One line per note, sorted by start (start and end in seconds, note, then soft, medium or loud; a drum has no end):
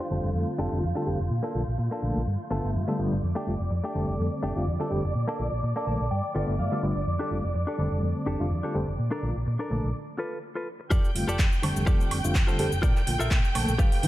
0.00 0.29 D4 medium
0.00 3.24 F4 medium
0.00 0.30 G4 medium
0.00 0.30 C5 medium
0.00 3.24 G6 medium
0.10 0.20 F1 medium
0.10 0.69 D3 medium
0.10 0.69 G3 medium
0.10 0.69 A3 medium
0.10 0.69 C4 medium
0.10 0.69 A4 loud
0.24 0.31 F1 medium
0.34 0.43 F2 medium
0.58 0.68 F1 medium
0.58 0.77 D4 loud
0.58 0.78 G4 medium
0.58 0.78 A4 loud
0.71 0.84 F1 medium
0.71 0.81 D3 medium
0.71 0.81 G3 medium
0.71 0.81 A3 medium
0.71 0.81 C4 medium
0.71 0.82 F4 medium
0.83 0.92 F2 medium
0.95 1.05 D3 medium
0.95 1.05 G3 medium
0.95 1.05 A3 medium
0.95 1.05 C4 medium
0.95 1.07 D4 medium
0.95 1.05 F4 medium
0.95 1.07 G4 medium
0.95 1.07 A4 medium
1.06 1.16 F1 medium
1.06 1.18 D3 medium
1.06 1.18 G3 medium
1.06 1.18 A3 medium
1.06 1.18 C4 medium
1.06 1.18 G4 medium
1.19 1.27 F1 medium
1.19 muted clean electric guitar stroke soft
1.30 1.40 A#2 medium
1.43 1.61 A#3 loud
1.43 1.61 D4 medium
1.43 1.62 A4 loud
1.54 1.64 A#1 medium
1.54 1.66 D3 medium
1.54 1.66 F3 medium
1.54 1.66 A3 medium
1.54 1.66 A#3 medium
1.54 1.66 F4 medium
1.68 1.75 A#1 medium
1.78 1.88 A#2 medium
1.78 muted clean electric guitar stroke soft
1.91 2.21 A#3 medium
1.91 2.21 D4 medium
1.91 2.22 A4 medium
2.02 2.12 A#1 medium
2.02 2.20 D3 medium
2.02 2.20 F3 medium
2.02 2.20 A3 medium
2.02 2.20 A#3 medium
2.02 2.20 A4 medium
2.16 2.23 A#1 medium
2.27 2.36 G2 medium
2.51 2.60 G1 medium
2.51 2.85 D3 medium
2.51 2.85 G3 medium
2.51 2.85 A3 medium
2.51 2.69 B3 loud
2.51 2.85 B3 medium
2.51 2.70 F4 medium
2.51 2.70 A4 loud
2.51 2.85 E5 medium
2.64 2.77 G1 medium
2.75 2.84 G2 medium
2.88 2.97 D3 medium
2.88 2.97 G3 medium
2.88 2.97 A3 medium
2.88 2.99 B3 medium
2.88 2.98 B3 medium
2.88 2.99 F4 medium
2.88 2.98 A4 medium
2.88 2.99 A4 medium
2.99 3.08 G1 medium
2.99 3.16 D3 medium
2.99 3.16 G3 medium
2.99 3.16 A3 medium
2.99 3.16 B3 medium
2.99 3.16 F4 medium
3.12 3.19 G1 medium
3.12 muted clean electric guitar stroke soft
3.23 3.32 F2 medium
3.23 9.95 D5 medium
3.23 9.95 D6 medium
3.35 3.53 A3 loud
3.35 3.54 D4 loud
3.35 3.54 G4 loud
3.47 3.56 F1 medium
3.47 3.58 D3 medium
3.47 3.58 G3 medium
3.47 3.58 A3 medium
3.47 3.58 C4 medium
3.47 3.58 F4 medium
3.60 3.67 F1 medium
3.71 3.80 F2 medium
3.71 muted clean electric guitar stroke soft
3.84 4.13 A3 medium
3.84 4.14 D4 medium
3.84 4.14 G4 medium
3.94 4.04 F1 medium
3.94 4.53 D3 medium
3.94 4.53 G3 medium
3.94 4.53 A3 medium
3.94 4.53 C4 medium
3.94 4.53 A4 loud
4.08 4.16 F1 medium
4.19 4.28 F2 medium
4.43 4.52 F1 medium
4.43 4.61 A3 medium
4.43 4.62 D4 medium
4.43 4.62 G4 loud
4.56 4.69 F1 medium
4.56 4.65 D3 medium
4.56 4.65 G3 medium
4.56 4.65 A3 medium
4.56 4.66 C4 medium
4.56 4.66 F4 medium
4.67 4.76 F2 medium
4.80 4.89 D3 medium
4.80 4.89 G3 medium
4.80 4.91 A3 medium
4.80 4.89 A3 medium
4.80 4.90 C4 medium
4.80 4.91 D4 medium
4.80 4.90 F4 medium
4.80 4.92 A4 medium
4.91 5.00 F1 medium
4.91 5.02 D3 medium
4.91 5.02 G3 medium
4.91 5.02 A3 medium
4.91 5.02 C4 medium
4.91 5.02 G4 medium
5.04 5.12 F1 medium
5.04 muted clean electric guitar stroke soft
5.15 5.24 A#2 medium
5.28 5.45 A#3 loud
5.28 5.46 D4 loud
5.28 5.46 A4 loud
5.39 5.48 A#1 medium
5.39 5.50 D3 medium
5.39 5.50 F3 medium
5.39 5.50 A3 medium
5.39 5.50 A#3 medium
5.39 5.51 F4 medium
5.52 5.60 A#1 medium
5.63 5.72 A#2 medium
5.63 muted clean electric guitar stroke soft
5.76 6.06 A#3 medium
5.76 6.06 D4 medium
5.76 5.87 A4 medium
5.87 5.96 A#1 medium
5.87 6.04 D3 medium
5.87 6.04 F3 medium
5.87 6.04 A3 medium
5.87 6.04 A#3 medium
5.87 6.04 A4 loud
5.87 6.10 A5 medium
6.00 6.08 A#1 medium
6.11 6.20 G2 loud
6.11 6.33 G5 medium
6.35 6.44 G1 medium
6.35 6.69 D3 medium
6.35 6.69 G3 medium
6.35 6.69 A3 medium
6.35 6.53 B3 loud
6.35 6.69 B3 medium
6.35 6.54 F4 medium
6.35 6.54 A4 loud
6.35 6.69 E5 medium
6.35 6.58 G5 medium
6.48 6.60 G1 medium
6.59 6.68 G2 loud
6.59 6.82 F5 medium
6.71 6.81 D3 medium
6.71 6.81 G3 medium
6.71 6.81 A3 medium
6.71 6.83 B3 medium
6.71 6.81 B3 medium
6.71 6.83 F4 medium
6.71 6.82 A4 loud
6.71 6.83 A4 medium
6.83 6.92 G1 medium
6.83 7.00 D3 medium
6.83 7.00 G3 medium
6.83 7.00 A3 medium
6.83 7.00 B3 medium
6.83 7.00 F4 medium
6.83 7.05 D5 medium
6.96 7.03 G1 medium
6.96 muted clean electric guitar stroke soft
7.07 7.16 F2 medium
7.19 7.37 D4 loud
7.19 7.38 G4 medium
7.19 7.38 A4 loud
7.30 7.40 F1 medium
7.30 7.42 D3 medium
7.30 7.42 G3 medium
7.30 7.42 A3 medium
7.30 7.42 C4 medium
7.30 7.42 F4 medium
7.44 7.52 F1 medium
7.54 7.64 F2 medium
7.54 muted clean electric guitar stroke soft
7.67 7.97 D4 medium
7.67 7.97 G4 medium
7.67 7.98 A4 medium
7.78 7.88 F1 medium
7.78 8.36 D3 medium
7.78 8.37 G3 medium
7.78 8.37 A3 medium
7.78 8.37 C4 medium
7.78 8.37 A4 loud
7.92 7.99 F1 medium
8.03 8.12 F2 loud
8.26 8.36 F1 medium
8.26 8.45 D4 loud
8.26 8.46 G4 medium
8.26 8.46 A4 loud
8.40 8.53 F1 medium
8.40 8.49 D3 medium
8.40 8.49 G3 medium
8.40 8.49 A3 medium
8.40 8.50 C4 medium
8.40 8.50 F4 medium
8.51 8.60 F2 loud
8.63 8.73 D3 medium
8.63 8.73 G3 medium
8.63 8.73 A3 medium
8.63 8.74 C4 medium
8.63 8.75 D4 medium
8.63 8.74 F4 medium
8.63 8.75 G4 medium
8.63 8.75 A4 medium
8.74 8.84 F1 medium
8.74 8.86 D3 medium
8.74 8.86 G3 medium
8.74 8.86 A3 medium
8.74 8.86 C4 medium
8.74 8.86 G4 medium
8.87 8.95 F1 medium
8.87 muted clean electric guitar stroke soft
8.99 9.08 A#2 medium
9.11 9.29 D4 loud
9.11 9.29 A4 loud
9.11 9.30 A#4 loud
9.23 9.32 A#1 medium
9.23 9.34 D3 medium
9.23 9.34 F3 medium
9.23 9.34 A3 medium
9.23 9.34 A#3 medium
9.23 9.34 F4 medium
9.36 9.43 A#1 medium
9.46 9.56 A#2 medium
9.46 muted clean electric guitar stroke soft
9.59 9.89 D4 medium
9.59 9.90 A4 medium
9.59 9.90 A#4 medium
9.70 9.80 A#1 medium
9.70 9.88 D3 medium
9.70 9.88 F3 medium
9.70 9.88 A3 medium
9.70 9.88 A#3 medium
9.70 9.88 A4 loud
9.84 9.91 A#1 medium
10.18 10.37 F4 loud
10.18 10.38 A4 loud
10.18 10.38 B4 loud
10.55 10.67 F4 medium
10.55 10.67 A4 medium
10.55 10.67 B4 medium
10.80 muted clean electric guitar stroke soft
10.90 11.00 F2 loud
10.90 11.09 F4 loud
10.90 11.10 G4 loud
10.90 11.10 A4 medium
10.90 11.10 D5 loud
10.90 14.08 G5 medium
10.90 14.08 G6 medium
10.90 kick loud
10.90 shaker medium
11.05 shaker soft
11.14 11.24 F1 medium
11.14 11.26 D3 medium
11.14 11.26 G3 medium
11.14 11.26 A3 medium
11.14 11.26 C4 medium
11.14 11.26 F4 medium
11.14 open hi-hat loud
11.28 11.35 F1 medium
11.28 11.45 F4 medium
11.28 11.46 G4 medium
11.28 11.46 A4 medium
11.28 11.46 D5 medium
11.28 shaker medium
11.39 11.48 F2 medium
11.39 kick loud
11.39 clap loud
11.39 shaker medium
11.52 shaker soft
11.62 11.72 F1 medium
11.62 12.21 D3 loud
11.62 12.21 G3 medium
11.62 12.21 A3 medium
11.62 12.21 C4 medium
11.62 12.21 A4 loud
11.62 muted clean electric guitar stroke soft
11.62 open hi-hat loud
11.62 high woodblock medium
11.76 11.84 F1 loud
11.76 shaker medium
11.86 11.96 F2 loud
11.86 12.17 F4 medium
11.86 12.18 G4 medium
11.86 12.18 A4 medium
11.86 12.18 D5 medium
11.86 kick loud
11.86 shaker medium
12.01 shaker soft
12.11 12.20 F1 loud
12.11 open hi-hat loud
12.11 high woodblock medium
12.24 12.37 F1 medium
12.24 12.33 D3 medium
12.24 12.34 G3 medium
12.24 12.34 A3 medium
12.24 12.34 C4 medium
12.24 12.34 F4 loud
12.24 shaker medium
12.35 12.44 F2 loud
12.35 kick loud
12.35 clap loud
12.35 shaker medium
12.47 12.57 D3 medium
12.47 12.58 G3 medium
12.47 12.58 A3 medium
12.47 12.58 C4 medium
12.47 12.65 F4 medium
12.47 12.58 F4 loud
12.47 12.65 G4 medium
12.47 12.66 A4 medium
12.47 12.66 C5 loud
12.47 shaker soft
12.59 12.68 F1 medium
12.59 12.70 D3 medium
12.59 12.70 G3 medium
12.59 12.70 A3 medium
12.59 12.70 C4 medium
12.59 12.71 G4 loud
12.59 open hi-hat loud
12.72 12.80 F1 medium
12.72 shaker medium
12.82 12.92 A#2 loud
12.82 13.01 F4 loud
12.82 13.01 A4 medium
12.82 13.02 A#4 loud
12.82 13.02 D5 loud
12.82 kick loud
12.82 shaker medium
12.96 clap soft
12.96 shaker soft
13.07 13.16 A#1 medium
13.07 13.18 D3 medium
13.07 13.18 F3 medium
13.07 13.18 A3 medium
13.07 13.18 A#3 medium
13.07 13.19 F4 medium
13.07 open hi-hat loud
13.19 13.27 A#1 medium
13.19 13.37 F4 medium
13.19 13.38 A4 medium
13.19 13.38 A#4 medium
13.19 13.38 E5 loud
13.19 shaker medium
13.31 13.40 A#2 medium
13.31 kick loud
13.31 clap loud
13.31 shaker medium
13.45 shaker soft
13.54 13.64 A#1 medium
13.54 13.72 D3 medium
13.54 13.72 F3 medium
13.54 13.72 A3 medium
13.54 13.72 A#3 medium
13.54 13.72 A4 loud
13.54 muted clean electric guitar stroke soft
13.54 open hi-hat loud
13.54 high woodblock medium
13.68 13.75 A#1 loud
13.68 shaker medium
13.78 13.88 G2 loud
13.78 14.08 G4 medium
13.78 14.08 A4 medium
13.78 14.08 B4 medium
13.78 14.08 F5 medium
13.78 kick loud
13.78 shaker medium
13.92 open hi-hat medium
13.92 shaker soft
14.03 14.08 G1 loud
14.03 14.08 D3 medium
14.03 14.08 E3 loud
14.03 14.08 G3 medium
14.03 14.08 A3 medium
14.03 14.08 B3 medium
14.03 open hi-hat loud